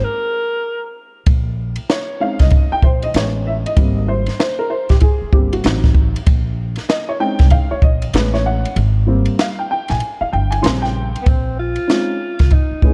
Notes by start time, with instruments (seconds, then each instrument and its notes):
0.04 alto saxophone A#4
1.26 upright bass A#1, kick, ride
1.76 ride
1.90 upright piano C#5, snare, hi-hat pedal, ride
2.20 upright piano G#3 C4 C#4 D#4 F5
2.39 upright bass C2, upright piano D#5, kick, snare, ride
2.50 kick, ride
2.72 upright piano G5, muted upright bass stroke
2.82 upright bass A#1, upright piano C5, kick
3.02 upright piano D#5, ride
3.14 upright bass A1, upright piano G#3 B3 C#4 C#5, snare, hi-hat pedal, ride
3.47 upright piano E5
3.66 upright piano D#5, ride
3.77 upright bass G#1, upright piano G3 A#3 C4, kick, ride
4.08 upright piano C5
4.26 snare, ride
4.40 upright piano C5, snare, hi-hat pedal, ride
4.59 upright piano A#4
4.70 upright piano C5
4.89 upright bass A#1, upright piano G4, kick, snare, ride
5.00 upright piano G#4, kick, ride
5.22 muted upright bass stroke
5.32 upright bass G1, upright piano G3 A#3 C4 G4, kick
5.53 upright piano F#4, ride
5.64 upright bass A1, upright piano F#3 C4 D#4, snare, hi-hat pedal, ride
5.84 kick, snare
5.95 kick
6.16 ride
6.27 upright bass A#1, kick, ride
6.76 snare, ride
6.89 upright piano D#5, snare, hi-hat pedal, ride
7.09 upright piano C#5
7.20 upright piano G#3 C4 C#4 D#4 G5
7.39 upright bass C2, kick, snare, ride
7.50 upright piano F5, kick, ride
7.71 upright piano C#5, muted upright bass stroke
7.82 upright bass A#1, upright piano D#5, kick
8.02 ride
8.14 upright bass A1, upright piano G#3 B3 C#4 B4, snare, hi-hat pedal, ride
8.34 upright piano C#5, snare
8.46 upright piano F#5
8.65 ride
8.76 upright bass G#1, ride
9.06 upright piano G3 A#3 C4
9.25 ride
9.39 upright piano F5, snare, hi-hat pedal, ride
9.59 upright piano G5
9.71 upright piano G5
9.88 upright bass A#1, upright piano G#5, snare, ride
10.00 ride
10.21 upright piano F5, muted upright bass stroke
10.33 upright bass G1, upright piano G5
10.51 upright piano G#5, ride
10.62 upright bass A#1, upright piano C#3 G3 C4 C6, hi-hat pedal, ride
10.66 snare
10.82 upright piano G5, snare
11.16 ride
11.22 alto saxophone B3
11.26 upright bass A#1, alto saxophone C4, kick, ride
11.59 alto saxophone F4
11.76 ride
11.87 upright piano G#3 C4 C#4 D#4 F4, snare, hi-hat pedal, ride
12.39 upright bass C2, kick, snare, ride
12.50 alto saxophone D#4, kick, ride
12.71 muted upright bass stroke
12.82 upright bass A#1, upright piano A3 B3 C#4 E4 G#4, kick